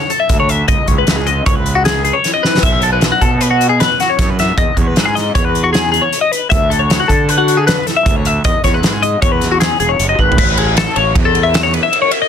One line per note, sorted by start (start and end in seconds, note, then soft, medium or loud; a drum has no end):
0.00 0.11 C#5 medium
0.10 0.20 A4 medium
0.10 closed hi-hat medium
0.20 0.39 E5 medium
0.29 0.61 D2 medium
0.29 kick medium
0.29 closed hi-hat medium
0.40 0.50 C#5 medium
0.49 0.68 E5 medium
0.49 closed hi-hat medium
0.68 0.77 C#2 medium
0.68 0.88 D#5 medium
0.68 kick medium
0.68 closed hi-hat medium
0.87 1.04 C#2 medium
0.87 0.98 C#5 medium
0.87 kick medium
0.87 closed hi-hat medium
0.98 1.16 B4 medium
1.07 1.40 C#2 medium
1.07 snare medium
1.07 closed hi-hat medium
1.16 1.27 G#4 medium
1.27 1.46 D#5 medium
1.27 closed hi-hat soft
1.46 2.10 C#2 medium
1.46 1.55 C#5 medium
1.46 kick loud
1.46 closed hi-hat medium
1.55 1.75 B4 medium
1.66 closed hi-hat medium
1.75 1.85 F#4 medium
1.85 2.03 G#4 medium
1.85 snare loud
1.85 closed hi-hat medium
2.05 2.15 G#4 medium
2.05 closed hi-hat medium
2.13 2.33 C#5 medium
2.24 snare soft
2.24 closed hi-hat medium
2.34 2.44 D#5 medium
2.43 2.63 B4 medium
2.43 snare medium
2.57 snare medium
2.63 3.10 B1 medium
2.63 2.83 E5 medium
2.63 kick loud
2.63 closed hi-hat medium
2.63 crash medium
2.82 2.92 A4 medium
2.82 closed hi-hat medium
2.93 3.12 B4 medium
3.01 snare medium
3.01 closed hi-hat medium
3.12 3.22 F#4 medium
3.21 3.85 B2 medium
3.21 3.41 A4 medium
3.21 kick medium
3.21 closed hi-hat medium
3.41 3.50 B4 medium
3.41 closed hi-hat medium
3.50 3.69 F#4 medium
3.61 closed hi-hat medium
3.69 3.79 G#4 medium
3.80 3.99 B4 medium
3.80 snare loud
3.80 closed hi-hat medium
4.00 4.09 F#4 medium
4.00 snare soft
4.00 closed hi-hat medium
4.10 4.30 C#5 medium
4.19 4.50 F#2 medium
4.19 kick medium
4.19 snare soft
4.19 closed hi-hat medium
4.30 4.39 B4 medium
4.39 4.58 E5 medium
4.39 snare soft
4.39 closed hi-hat medium
4.58 4.65 E2 medium
4.58 4.77 D#5 medium
4.58 kick loud
4.58 closed hi-hat medium
4.77 4.93 E2 medium
4.77 4.87 C#5 medium
4.77 kick medium
4.77 closed hi-hat medium
4.87 5.06 B4 medium
4.96 5.28 G#2 medium
4.96 snare loud
4.96 closed hi-hat medium
5.05 5.15 G#4 medium
5.15 5.35 D#5 medium
5.15 snare soft
5.15 closed hi-hat medium
5.35 5.98 E2 medium
5.35 5.45 C#5 medium
5.35 kick loud
5.35 closed hi-hat medium
5.45 5.64 B4 medium
5.55 closed hi-hat medium
5.64 5.72 F#4 medium
5.73 5.91 G#4 medium
5.73 snare loud
5.73 closed hi-hat medium
5.92 6.02 G#4 medium
5.92 closed hi-hat medium
6.01 6.21 C#5 medium
6.13 closed hi-hat medium
6.21 6.32 D#5 medium
6.32 6.50 B4 medium
6.32 closed hi-hat medium
6.50 6.99 D2 medium
6.50 6.70 E5 medium
6.50 kick loud
6.50 closed hi-hat medium
6.70 6.80 A4 medium
6.70 closed hi-hat medium
6.79 6.99 C#5 medium
6.90 snare loud
6.90 closed hi-hat medium
7.00 7.10 F#4 medium
7.08 7.72 D3 medium
7.08 7.29 A4 medium
7.08 kick medium
7.08 closed hi-hat medium
7.29 7.39 B4 medium
7.29 closed hi-hat medium
7.38 7.58 F#4 medium
7.48 closed hi-hat medium
7.57 7.67 G#4 medium
7.67 7.87 B4 medium
7.67 snare loud
7.67 closed hi-hat medium
7.87 7.97 A4 medium
7.87 snare soft
7.87 closed hi-hat medium
7.97 8.16 E5 medium
8.06 8.37 D2 medium
8.06 kick loud
8.06 closed hi-hat medium
8.16 8.26 C#5 medium
8.25 8.45 E5 medium
8.25 closed hi-hat medium
8.44 8.53 E2 medium
8.44 8.64 D#5 medium
8.44 kick loud
8.44 closed hi-hat medium
8.64 8.80 E2 medium
8.64 8.74 C#5 medium
8.64 kick medium
8.64 snare soft
8.64 closed hi-hat medium
8.74 8.93 B4 medium
8.83 9.14 G#2 medium
8.83 snare loud
8.83 closed hi-hat medium
8.93 9.03 G#4 medium
9.03 9.22 D#5 medium
9.03 closed hi-hat medium
9.22 9.69 E2 medium
9.22 9.32 C#5 medium
9.22 kick loud
9.22 closed hi-hat medium
9.32 9.51 B4 medium
9.41 snare soft
9.41 closed hi-hat medium
9.52 9.60 F#4 medium
9.60 9.79 G#4 medium
9.60 snare loud
9.60 closed hi-hat medium
9.80 9.98 E1 medium
9.80 9.90 G#4 medium
9.80 closed hi-hat medium
9.89 10.09 C#5 medium
9.99 10.17 F#1 medium
9.99 closed hi-hat medium
10.09 10.19 D#5 medium
10.18 10.36 G#1 medium
10.18 10.38 B4 medium
10.18 kick medium
10.32 floor tom medium
10.38 10.85 A1 medium
10.38 10.58 B4 medium
10.38 kick loud
10.38 crash loud
10.57 10.77 G#4 medium
10.57 ride medium
10.77 10.97 A4 medium
10.77 snare loud
10.77 ride loud
10.96 11.12 A1 medium
10.96 11.16 C#5 medium
10.96 ride medium
11.15 11.78 E2 loud
11.15 kick loud
11.15 ride medium
11.25 11.45 A4 medium
11.35 ride medium
11.43 11.63 E5 medium
11.54 snare loud
11.54 ride loud
11.63 11.74 C#5 medium
11.74 11.83 B4 medium
11.74 ride medium
11.83 12.01 E5 medium
11.93 ride loud
12.02 12.12 C#5 medium
12.11 12.21 E5 medium
12.11 ride medium
12.22 12.28 D#5 medium